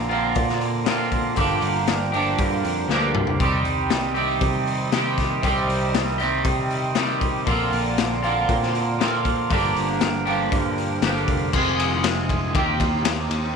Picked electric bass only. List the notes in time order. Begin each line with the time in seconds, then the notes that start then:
Already playing: A#1
0.37 A#2
1.37 G1
1.62 G1
2.39 G2
2.64 F2
2.88 D2
3.15 C2
3.40 C2
3.65 C2
4.41 C3
5.44 C2
5.68 C2
6.45 C3
7.47 A#1
7.73 A#1
8.49 A#2
9.51 G1
9.76 G1
10.52 G2
11.03 G1
11.28 F1
11.54 F1
12.55 D#2
12.80 D#2
13.04 D#2
13.30 D#2